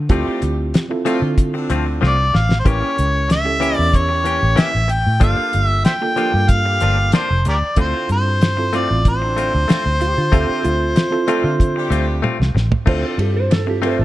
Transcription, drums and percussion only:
0.09 kick, closed hi-hat
0.42 closed hi-hat
0.74 snare, closed hi-hat
1.06 closed hi-hat
1.38 kick, closed hi-hat
1.70 closed hi-hat
2.03 snare
2.35 snare
2.51 snare
2.66 kick, closed hi-hat
2.98 closed hi-hat
3.30 snare, closed hi-hat
3.62 closed hi-hat
3.94 kick, closed hi-hat
4.25 closed hi-hat
4.57 snare, closed hi-hat
4.89 closed hi-hat
5.21 kick, closed hi-hat
5.53 closed hi-hat
5.85 snare, closed hi-hat
6.17 closed hi-hat
6.49 kick, closed hi-hat
6.80 closed hi-hat
7.12 snare, closed hi-hat
7.45 closed hi-hat
7.76 kick, closed hi-hat
8.09 closed hi-hat
8.41 snare, closed hi-hat
8.73 closed hi-hat
9.05 kick, closed hi-hat
9.38 closed hi-hat
9.69 snare, closed hi-hat
10.01 closed hi-hat
10.33 kick, closed hi-hat
10.64 closed hi-hat
10.96 snare, closed hi-hat
11.28 closed hi-hat
11.60 kick, closed hi-hat
11.92 closed hi-hat
12.24 high tom
12.42 snare
12.57 snare
12.72 floor tom
12.87 kick, crash
13.19 ride
13.51 snare, ride
13.83 ride

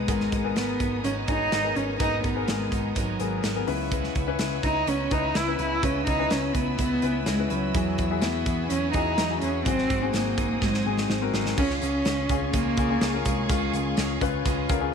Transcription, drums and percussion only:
0.08 kick, closed hi-hat
0.20 snare
0.32 kick, closed hi-hat
0.56 snare, closed hi-hat
0.80 kick, closed hi-hat
1.04 closed hi-hat
1.28 kick, closed hi-hat
1.52 snare, closed hi-hat
1.76 closed hi-hat
2.00 kick, closed hi-hat
2.24 kick, closed hi-hat
2.48 snare, closed hi-hat
2.72 kick, closed hi-hat
2.96 kick, closed hi-hat
3.20 closed hi-hat
3.44 snare, closed hi-hat
3.67 open hi-hat
3.92 kick, closed hi-hat
4.04 snare
4.15 kick, closed hi-hat
4.39 snare, closed hi-hat
4.63 kick, closed hi-hat
4.87 closed hi-hat
5.11 kick, closed hi-hat
5.35 snare, closed hi-hat
5.59 closed hi-hat
5.83 kick, closed hi-hat
6.07 kick, closed hi-hat
6.30 snare, closed hi-hat
6.55 kick, closed hi-hat
6.79 kick, closed hi-hat
7.02 closed hi-hat
7.26 snare, closed hi-hat
7.50 closed hi-hat
7.75 kick, closed hi-hat
7.98 kick, closed hi-hat
8.22 snare, closed hi-hat
8.46 kick, closed hi-hat
8.70 closed hi-hat
8.93 kick, closed hi-hat
9.18 snare, closed hi-hat
9.42 closed hi-hat
9.66 kick, closed hi-hat
9.78 snare
9.90 kick, closed hi-hat
10.14 snare, closed hi-hat
10.38 kick, closed hi-hat
10.62 kick, snare
10.74 snare
10.98 snare
11.10 snare
11.34 snare
11.46 snare
11.58 kick, crash
11.70 snare
11.82 hi-hat pedal, open hi-hat
12.05 snare, hi-hat pedal, open hi-hat
12.29 kick, hi-hat pedal, open hi-hat
12.54 kick, hi-hat pedal, open hi-hat
12.77 kick, hi-hat pedal, open hi-hat
13.01 snare, hi-hat pedal, open hi-hat
13.25 kick, hi-hat pedal, open hi-hat
13.50 kick, hi-hat pedal, open hi-hat
13.73 hi-hat pedal, open hi-hat
13.97 snare, hi-hat pedal, open hi-hat
14.21 kick, hi-hat pedal, open hi-hat
14.46 kick, hi-hat pedal, open hi-hat
14.69 kick, hi-hat pedal, open hi-hat

